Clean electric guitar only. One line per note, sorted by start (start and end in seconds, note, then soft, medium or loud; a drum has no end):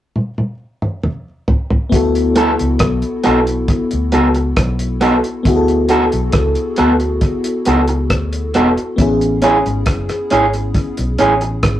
2.36 2.50 B3 medium
2.36 2.51 F#4 medium
2.36 2.51 A4 loud
3.24 3.38 B3 medium
3.24 3.39 F#4 medium
3.24 3.39 A4 medium
4.12 4.27 B3 medium
4.12 4.27 F#4 medium
4.12 4.27 A4 medium
4.36 muted clean electric guitar stroke soft
5.01 5.15 B3 medium
5.01 5.16 F#4 medium
5.01 5.16 A4 medium
5.89 6.03 B3 medium
5.89 6.04 F#4 medium
5.89 6.04 A4 loud
6.78 6.92 B3 medium
6.78 6.92 F#4 medium
6.78 6.92 A4 medium
7.66 7.80 B3 medium
7.66 7.81 F#4 medium
7.66 7.81 A4 medium
7.89 muted clean electric guitar stroke soft
8.55 8.68 B3 medium
8.55 8.69 F#4 medium
8.55 8.69 A4 medium
9.42 9.56 C#4 medium
9.42 9.57 E4 medium
9.42 9.57 G#4 medium
10.31 10.45 C#4 medium
10.31 10.45 E4 medium
10.31 10.45 G#4 medium
11.19 11.33 C#4 medium
11.19 11.33 E4 medium
11.19 11.33 G#4 medium
11.42 muted clean electric guitar stroke soft